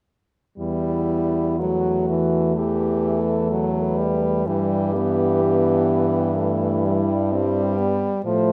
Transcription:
french horn
0.58 E2 G3 B3 E4
1.59 F#3 A3 F#4
2.10 E3
2.57 E3 G4
3.20 A4
3.51 F#3
3.84 B4
3.98 G3
4.46 G2 E3 G3 G4
4.95 E3 B3
5.43 B3
6.37 A3 E4
6.85 G3
7.31 G3 C4
7.78 B3
8.26 A2 F3 A3 C5

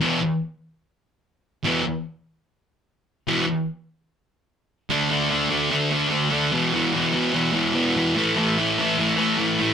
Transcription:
distorted electric guitar
0.00 E2 B2 E3
1.64 E2 B2 E3
3.27 E2 B2 E3
4.90 D3 A3 D4
5.10 D3 A3 D4
5.30 D3 A3 D4
5.50 D3 A3 D4
5.71 D3 A3 D4
5.91 D3 A3 D4
6.10 D3 A3 D4
6.30 D3 A3 D4
6.52 E2 B2 E3
6.73 E2 B2 E3
6.94 E2 B2 E3
7.14 E2 B2 E3
7.33 E2 B2 E3
7.53 E2 B2 E3
7.74 E2 B2 E3
7.96 E2 B2 E3
8.16 A2 E3 A3
8.36 A2 E3 A3
8.58 A2 E3 A3
8.78 A2 E3 A3
8.98 A2 E3 A3
9.17 A2 E3 A3
9.38 A2 E3 A3
9.59 A2 E3 A3

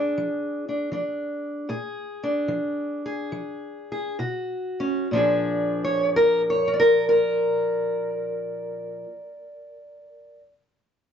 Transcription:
steel-string acoustic guitar
Already playing: F3 D4 G#4
0.18 F3
0.69 D4
0.92 F3 D4
1.69 A#2 G#4
2.23 D4
2.48 F3
3.06 G#4
3.32 F3
3.92 G#4
4.19 B2 F#4
4.80 C#4
5.11 A#2 F3
5.15 D4 G#4
5.84 C#5
6.16 A#4
6.50 C#5
6.68 A#4
6.74 D5
6.80 A#4
7.09 A#4

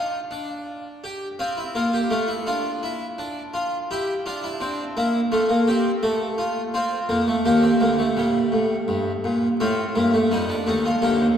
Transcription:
harpsichord
Already playing: F4
0.31 D4
1.04 G4
1.39 C4 F4
1.57 E4
1.75 A#3 F4
1.93 G4
2.10 A3 F4
2.28 E4
2.46 D4 F4
2.83 E4
3.18 D4
3.54 F4
3.91 E4 G4
4.26 D4 F4
4.44 E4
4.60 C4 D4
4.97 A#3 E4
5.32 A3 F4
5.49 A#3
5.67 C4 G4
6.03 A3 A4
6.38 F4
6.74 C4 F4
7.09 F2 A#3
7.27 A3
7.45 D#2 A#3 G4
7.63 C4
7.80 D2 A#3
7.99 A3
8.17 A#2 G3
8.52 A2
8.88 G2
9.24 A#2
9.60 A2 C4 F4
9.95 G2 A#3
10.14 A3
10.31 F2 G3 D#4
10.49 D4
10.67 D#2 A3 D#4
10.85 F4
11.02 D2 A#3 G4
11.19 D#2

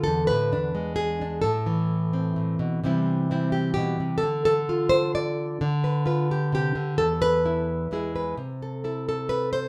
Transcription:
nylon-string guitar
Already playing: D3
0.04 E2 A4
0.27 A2 B4
0.52 E2 D4
0.75 G#3
0.96 G#4
1.21 D4
1.42 A2 A4
1.66 E3
2.13 C4
2.36 A2
2.59 B2
2.84 C3 E3 G3 C4 E4
3.31 G3 C4 E4
3.52 G4
3.74 B2 G4
4.00 C3
4.18 A4
4.23 D3
4.45 A4
4.69 F4
4.89 C5
5.15 D5
5.61 D3
5.84 B4
6.06 F4 B4
6.31 G4
6.52 C3 G4
6.75 D3
6.98 E2 A4
7.22 B4
7.46 E4
7.91 E2 G#3 E4 G#4
8.16 B4
8.37 C3
8.62 A4
8.84 E4 A4
9.09 A4
9.29 B4
9.53 C5

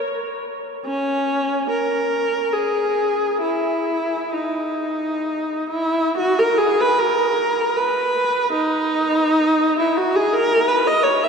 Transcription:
viola
0.86 C#4
1.70 A#4
2.52 G#4
3.41 E4
4.33 D#4
5.69 E4
6.17 F#4
6.39 A#4
6.58 G#4
6.80 B4
6.99 A#4
7.76 B4
8.52 D#4
9.79 E4
9.97 F#4
10.15 G#4
10.33 A#4
10.68 B4
10.87 D#5
11.03 C#5
11.24 E5

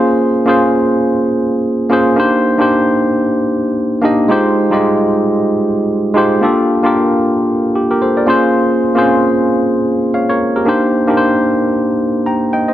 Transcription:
tine electric piano
Already playing: A#3 C#4 F4 G#4 C5
0.46 A#3 C#4 F4 G#4 C5
1.90 A#3 C#4 F4 G#4 C5
2.16 A#3 D4 D#4 G4 C5
2.58 A#3 D4 D#4 G4 C5
4.02 A#3 D4 D#4 G4 D#5
4.28 G#3 D#4 F4 G4 C5
4.70 G3 D#4 F4 G4 D#5
4.77 G#3
6.14 G#3 D#4 F4 G4 C5
6.41 A#3 D4 F4 G4 A4
6.83 A#3 D4 F4 G4 A#4
7.75 G4
7.91 G4 A#4
8.02 A4 C5
8.17 A#4 D5
8.26 A#3 C#4 F4 G#4 C5
8.95 A#3 C4 F4 G#4 C5
9.02 C#4
10.14 C#5 F5
10.29 A#4 C#5
10.56 G4 A#4
10.65 A#3 D4 D#4 G4 C5
11.07 A#3 D4 D#4 G4 A#4
11.17 C5
12.26 G5 A#5
12.53 D#5 G5
12.68 C5 D#5

